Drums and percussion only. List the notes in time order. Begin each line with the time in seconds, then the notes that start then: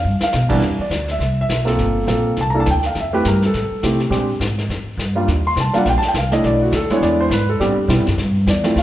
0.21 snare
0.32 snare, hi-hat pedal
0.50 kick, crash
0.62 brush sweep, snare
0.91 snare, hi-hat pedal
1.08 snare
1.20 brush sweep, snare
1.49 snare, hi-hat pedal
1.67 snare
1.78 brush sweep, snare
2.08 snare, hi-hat pedal
2.36 brush sweep, snare
2.66 snare, hi-hat pedal
2.83 snare
2.95 brush sweep, snare
3.25 snare, hi-hat pedal
3.42 snare
3.54 brush sweep, snare
3.83 snare, hi-hat pedal
4.00 snare
4.12 brush sweep, snare
4.41 snare, hi-hat pedal
4.58 snare
4.70 brush sweep, snare
4.99 snare, hi-hat pedal
5.28 brush sweep, snare
5.57 snare, hi-hat pedal
5.74 snare
5.85 brush sweep, snare
6.02 snare
6.14 snare, hi-hat pedal
6.32 snare
6.43 brush sweep, snare
6.72 snare, hi-hat pedal
6.90 snare
7.02 brush sweep, snare
7.31 snare, hi-hat pedal
7.60 brush sweep, snare
7.89 snare, hi-hat pedal
8.06 snare
8.18 brush sweep, snare
8.47 snare, hi-hat pedal
8.64 snare
8.76 brush sweep, snare